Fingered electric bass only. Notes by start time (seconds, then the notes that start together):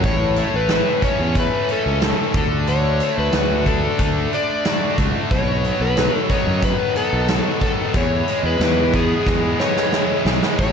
0.04 A1
0.54 A1
1.19 E2
1.86 C#2
2.34 D2
3.18 D2
3.34 D2
3.99 D2
4.99 C#2
5.31 B1
5.80 B1
6.47 F#2
7.13 B1
7.95 E2
8.43 E2
8.60 E2
9.27 E2
10.25 B1
10.59 A1